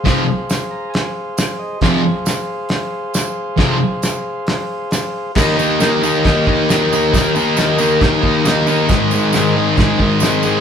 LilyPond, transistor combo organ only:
\new Staff \with { instrumentName = "Transistor combo organ" } { \time 4/4 \key ees \mixolydian \tempo 4 = 136 << { r4. bes''8 aes''8 f''8 f''8 ees''8 | r1 | r1 | r1 |
r1 | r1 | } \\ { <aes' c'' f''>1 | <aes' c'' f''>1~ | <aes' c'' f''>1 | <g' bes' ees''>1~ |
<g' bes' ees''>1 | <aes' c'' ees''>1 | } >> }